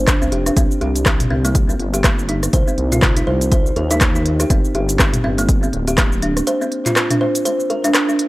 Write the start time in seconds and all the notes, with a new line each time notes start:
Already playing: G1
0.07 D4, kick, cross-stick, clap, closed hi-hat, cabasa
0.22 C2 C4, cabasa
0.32 F1 G4, closed hi-hat
0.46 D4, cross-stick, closed hi-hat, cabasa
0.57 C2 C4, kick, closed hi-hat, cabasa
0.71 cabasa
0.81 C2 G4, closed hi-hat
0.96 closed hi-hat, cabasa
1.06 C4, kick, cross-stick, clap, cabasa
1.20 closed hi-hat, mid tom, cabasa
1.30 C2 C4
1.45 A#3, closed hi-hat, cabasa
1.55 kick, closed hi-hat, cabasa
1.69 C4, cabasa
1.80 G1, closed hi-hat
1.94 G4, closed hi-hat, cabasa
2.04 A#3, kick, cross-stick, clap, closed hi-hat, cabasa
2.19 cabasa
2.29 D#4, closed hi-hat
2.43 cross-stick, closed hi-hat, cabasa
2.53 C2 C5, kick, closed hi-hat, cabasa
2.67 C4, cabasa
2.78 C2, closed hi-hat
2.92 F4, closed hi-hat, mid tom, cabasa
3.02 kick, cross-stick, clap, cabasa
3.16 D#4, closed hi-hat, cabasa
3.27 C2 C5
3.41 closed hi-hat, cabasa
3.52 C5, kick, closed hi-hat, cabasa
3.66 cabasa
3.76 D#2 A#4, closed hi-hat
3.91 D#4, closed hi-hat, cabasa
4.01 kick, cross-stick, clap, closed hi-hat, cabasa
4.15 D#4, cabasa
4.26 closed hi-hat
4.40 G4, cross-stick, closed hi-hat, cabasa
4.50 G1 C4, kick, closed hi-hat, cabasa
4.65 cabasa
4.75 G1 G4, closed hi-hat
4.89 closed hi-hat, cabasa
4.99 C4, kick, cross-stick, clap, cabasa
5.14 closed hi-hat, mid tom, cabasa
5.24 G1 C4
5.38 A#3, closed hi-hat, cabasa
5.49 kick, closed hi-hat, cabasa
5.63 C4, cabasa
5.73 D1, closed hi-hat
5.87 G4, closed hi-hat, cabasa
5.98 A#3, kick, cross-stick, clap, closed hi-hat, cabasa
6.12 cabasa
6.22 D4, closed hi-hat
6.37 cross-stick, closed hi-hat, cabasa
6.47 C5, closed hi-hat, cabasa
6.61 C4, cabasa
6.72 closed hi-hat
6.86 F4, clap, closed hi-hat, mid tom, cabasa
6.96 cross-stick, clap, cabasa
7.10 D4, closed hi-hat, mid tom, cabasa
7.21 C5
7.35 closed hi-hat, cabasa
7.45 C5, closed hi-hat, cabasa
7.60 cabasa
7.70 A#4, closed hi-hat
7.84 D4, closed hi-hat, cabasa
7.94 cross-stick, clap, closed hi-hat, cabasa
8.09 D4, cabasa
8.19 closed hi-hat